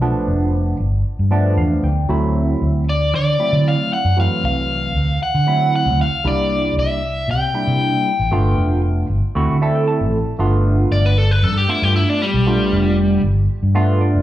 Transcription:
Already playing: fingered electric bass B1
0.01 tine electric piano F3 A3 B3 D4
0.28 fingered electric bass F1
0.80 fingered electric bass G1
1.19 fingered electric bass G2
1.31 tine electric piano F3 A3 B3 D4 D5
1.57 fingered electric bass E2, tine electric piano F5
1.83 fingered electric bass D2, tine electric piano G5
2.09 fingered electric bass D2, tine electric piano F#3 A3 C4 E4
2.62 fingered electric bass D2
2.89 overdriven electric guitar D5
3.14 fingered electric bass D3, overdriven electric guitar D5
3.39 tine electric piano F#3 A3 C4 E4
3.53 fingered electric bass D3
3.68 overdriven electric guitar F5
3.93 overdriven electric guitar F#5
4.04 fingered electric bass F#2
4.16 tine electric piano E3 F#3 A3 C4, overdriven electric guitar F5
4.44 fingered electric bass C2, overdriven electric guitar F5
4.95 fingered electric bass D2
5.23 overdriven electric guitar F#5
5.34 fingered electric bass D3
5.47 tine electric piano F#3 A3 C4 E4
5.76 overdriven electric guitar F#5
5.86 fingered electric bass D2
6.01 overdriven electric guitar F5
6.24 fingered electric bass C2, tine electric piano G3 A#3 D4 E4, overdriven electric guitar D5
6.77 fingered electric bass C2, overdriven electric guitar E5
7.28 fingered electric bass C3, overdriven electric guitar G5
7.54 tine electric piano G3 A#3 D4 E4
7.67 fingered electric bass C3
8.19 fingered electric bass A1
8.31 fingered electric bass G1, tine electric piano A3 B3 D4 F4
8.58 fingered electric bass F1
9.10 fingered electric bass G1
9.35 fingered electric bass D2, tine electric piano A3 C4 E4 F#4
9.49 fingered electric bass D3
9.61 tine electric piano A3 C4 E4 A4 D5
9.75 tine electric piano G5
9.88 tine electric piano A5
10.01 fingered electric bass A1
10.39 fingered electric bass G1, tine electric piano A3 B3 D4 F4
10.91 fingered electric bass G1, overdriven electric guitar D5
11.05 overdriven electric guitar B4
11.18 overdriven electric guitar A4
11.31 overdriven electric guitar B4
11.43 fingered electric bass G2, overdriven electric guitar A4
11.57 overdriven electric guitar G4
11.68 tine electric piano A3 B3 D4 F4, overdriven electric guitar E4
11.82 fingered electric bass G2, overdriven electric guitar G4
11.96 overdriven electric guitar E4
12.09 overdriven electric guitar D4
12.22 overdriven electric guitar G3
12.34 fingered electric bass B1
12.46 tine electric piano A3 B3 D4 F4
12.72 fingered electric bass F1
13.24 fingered electric bass G1
13.63 fingered electric bass G2
13.74 tine electric piano A3 B3 D4 F4
14.01 tine electric piano D5
14.15 fingered electric bass G1

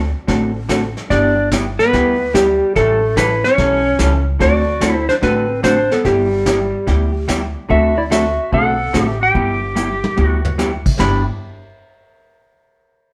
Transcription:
Already playing: upright bass D2, clarinet F#4, electric slide guitar D5
0.27 upright bass A1, hollow-body jazz guitar D3 A3 C4 F#4 A4, brush sweep, kick, snare
0.69 hollow-body jazz guitar D3 A3 C4 F#4 A4, kick, snare, hi-hat pedal
0.97 snare
1.10 upright bass G1, hollow-body jazz guitar G3 B3 E4 G4, clarinet D4, electric slide guitar D5, brush sweep, kick, snare
1.52 hollow-body jazz guitar G3 B3 E4 G4, kick, snare, hi-hat pedal
1.79 clarinet B3, electric slide guitar B4, snare
1.93 upright bass D2, hollow-body jazz guitar G3 B3 E4 G4, brush sweep, kick, snare
2.34 hollow-body jazz guitar G3 B3 E4 G4, clarinet G3, electric slide guitar G4, kick, snare, hi-hat pedal
2.75 upright bass A1, hollow-body jazz guitar E3 G3 C#4 E4 A4, clarinet A3, electric slide guitar A4, brush sweep, kick, snare
3.17 hollow-body jazz guitar E3 G3 C#4 E4 A4, clarinet E4, electric slide guitar B4, kick, snare, hi-hat pedal
3.44 clarinet C#4, electric slide guitar C#5, snare
3.58 upright bass B1, hollow-body jazz guitar E3 G3 C#4 E4 A4, brush sweep, kick, snare
3.99 upright bass C#2, hollow-body jazz guitar E3 G3 C#4 E4 A4, kick, snare, hi-hat pedal
4.39 upright bass D2, hollow-body jazz guitar D3 A3 C4 F#4 A4, clarinet F#4, electric slide guitar D5, brush sweep, kick, snare
4.80 hollow-body jazz guitar D3 A3 C4 F#4 A4, kick, snare, hi-hat pedal
4.90 clarinet E4
4.96 electric slide guitar C5
5.09 clarinet D4, electric slide guitar C5, snare
5.22 upright bass A1, hollow-body jazz guitar D3 A3 C4 F#4 A4, clarinet C4, electric slide guitar B4, brush sweep, kick, snare
5.63 hollow-body jazz guitar D3 A3 C4 F#4 A4, clarinet D4, electric slide guitar C5, kick, snare, hi-hat pedal
5.91 clarinet B3, electric slide guitar A4, snare
6.04 upright bass G1, hollow-body jazz guitar G3 B3 E4 G4, clarinet G3, electric slide guitar G4, brush sweep, kick, snare
6.46 hollow-body jazz guitar G3 B3 E4 G4, kick, snare, hi-hat pedal
6.87 upright bass D2, hollow-body jazz guitar G3 B3 E4 G4, brush sweep, kick, snare
7.28 hollow-body jazz guitar G3 B3 E4 G4, kick, snare, hi-hat pedal
7.69 upright bass D2, hollow-body jazz guitar D3 A3 C4 F#4 A4, clarinet F#4, electric slide guitar E5, brush sweep, kick
7.97 clarinet E4, electric slide guitar D5
8.10 hollow-body jazz guitar D3 A3 C4 F#4 A4, clarinet F#4, electric slide guitar E5, snare, hi-hat pedal
8.52 upright bass B1, hollow-body jazz guitar D3 A3 C4 F#4 A4, clarinet A4, electric slide guitar F#5, brush sweep, kick
8.93 upright bass A1, hollow-body jazz guitar D3 A3 C4 F#4 A4, snare, hi-hat pedal
9.02 clarinet G4
9.08 electric slide guitar E5
9.21 clarinet G4, electric slide guitar G5
9.34 upright bass G1, hollow-body jazz guitar G3 B3 E4 G4, brush sweep, kick
9.75 hollow-body jazz guitar G3 B3 E4 G4, hi-hat pedal, high tom
10.04 high tom
10.17 upright bass D2, hollow-body jazz guitar G3 B3 E4 G4, floor tom
10.24 clarinet F#4, electric slide guitar F#5
10.45 floor tom
10.58 hollow-body jazz guitar G3 B3 E4 G4, snare, hi-hat pedal
10.86 kick, crash
10.99 upright bass G1, hollow-body jazz guitar G3 B3 E4 G4, clarinet D4, electric slide guitar B5, snare, floor tom

